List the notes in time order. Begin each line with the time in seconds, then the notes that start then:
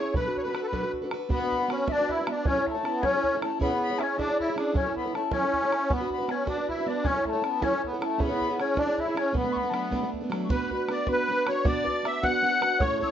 Already playing: C#4 E4 G#4 C#5 C#6
0.00 C#5
0.14 B2 F#3 D4 F#4 A4 B4 B5, bodhran
0.26 D4 F#4 A4 B4
0.37 C#5, bodhran
0.42 B4 B5
0.46 D4 F#4 A4
0.53 D4 F#4 A4 B4, bodhran
0.63 A4 B4 B5
0.72 B2 F#3 D4 F#4 A4 B4, bodhran
0.82 D4 F#4 A4 B4
0.93 bodhran
1.02 D4 F#4 A4 B4
1.11 D4 F#4 A4 B4, bodhran
1.29 B3 D4 F#4 B4 B5, bodhran
1.40 D4 F#4 B4
1.52 bodhran
1.59 D4 F#4 B4
1.68 B3 C#4 D4 F#4 B4, bodhran
1.87 B3 D4 F#4 B4 E5, bodhran
1.92 D5
1.98 D4 F#4 B4
2.09 E4 E5, bodhran
2.18 D4 F#4 B4
2.27 B3 D4 F#4 B4 E5, bodhran
2.32 D5
2.45 F#3 C#4 E4 A4 C#5, bodhran
2.55 E4 A4 C#5
2.66 A3 B5, bodhran
2.71 C#5 A5
2.76 E4 A4
2.83 B3 C#4 E4 A4 C#5, bodhran
3.02 F#3 C#4 E4 A4 C#5, bodhran
3.13 E4 A4 C#5
3.24 bodhran
3.34 E4 A4 C#5
3.42 A3 C#4 E4 A4 C#5 A5, bodhran
3.60 B3 C#4 E4 G#4 C#5 B5, bodhran
3.71 E4 G#4 C#5
3.82 B5
3.90 E4 G#4 C#5
3.99 C#4 E4 G#4 C#5 E5, bodhran
4.03 C#5
4.17 C#4 D4 E4 G#4 C#5 E5, bodhran
4.22 D5
4.28 E4 G#4 C#5
4.40 E4, bodhran
4.47 E4 G#4 C#5
4.56 C#4 D4 E4 G#4 C#5, bodhran
4.74 F#3 C#4 E4 A4 C#5, bodhran
4.85 E4 A4 C#5
4.96 B3 B5, bodhran
5.04 E4 A4 C#5
5.13 A3 C#4 E4 A4 C#5 A5, bodhran
5.31 F#3 C#4 E4 A4 C#5, bodhran
5.43 E4 A4 C#5
5.53 bodhran
5.62 E4 A4 C#5
5.71 C#4 E4 A4 C#5, bodhran
5.90 B3 D4 F#4 B4 B5, bodhran
6.00 D4 F#4 B4
6.10 B3 B5, bodhran
6.19 D4 F#4 B4
6.28 B3 C#4 D4 F#4 B4 C#5, bodhran
6.46 B3 D4 F#4 B4 D5, bodhran
6.57 D4 F#4 B4
6.68 E4 E5, bodhran
6.77 D4 F#4 B4
6.87 B3 D4 F#4 B4 D5
7.04 F#3 C#4 E4 A4 C#5, bodhran
7.14 E4 A4 C#5
7.25 A3 A5 B5, bodhran
7.33 E4 A4 C#5
7.42 B3 C#4 E4 A4 C#5, bodhran
7.61 F#3 C#4 E4 A4 C#5, bodhran
7.72 E4 A4 C#5
7.84 B3, bodhran
7.91 E4 A4 C#5
7.99 C#4 E4 A4 C#5 A5, bodhran
8.05 A3
8.18 B3 C#4 E4 G#4 C#5 B5, bodhran
8.29 E4 G#4 C#5
8.41 bodhran
8.48 E4 G#4 C#5
8.58 C#4 E4 G#4 C#5, bodhran
8.75 C#4 D4 E4 G#4 C#5 E5, bodhran
8.82 D5
8.87 E4 G#4 C#5
8.98 E4 E5, bodhran
9.06 E4 G#4 C#5
9.15 C#4 E4 G#4 C#5, bodhran
9.32 B2 F#3 A3 B3 D4 B5, bodhran
9.43 A3 B3 D4
9.52 C#6, bodhran
9.57 B5
9.63 A3 B3 D4
9.69 F#3 B3 A5
9.74 A3 D4 B5, bodhran
9.90 B2 F#3 A3 B3 D4, bodhran
10.01 A3 B3 D4
10.14 bodhran
10.21 A3 B3 D4
10.30 F#3 A3 B3 D4, bodhran
10.44 C#6
10.49 B3 D4 F#4 B4 B5, bodhran
10.71 D4 F#4 B4, bodhran
10.88 B3 D4 F#4 B4 D5 D6, bodhran
11.07 B3 D4 F#4 B4 B5, bodhran
11.11 B4
11.29 B3 D4 F#4 B4
11.46 D4 F#4 B4 C#5 C#6, bodhran
11.65 B3 D4 F#4 B4 D5 D6, bodhran
11.84 D4 F#4 B4, bodhran
12.03 B3 D4 F#4 B4 E5, bodhran
12.23 B3 D4 F#4 B4 F#5 F#6, bodhran
12.43 B3 D4 F#4 B4
12.61 D4 F#4 B4, bodhran
12.80 A2 A3 C#4 E4 A4 C#5 C#6, bodhran
13.00 C#4 E4 A4 C#5 E6, bodhran
13.08 C#6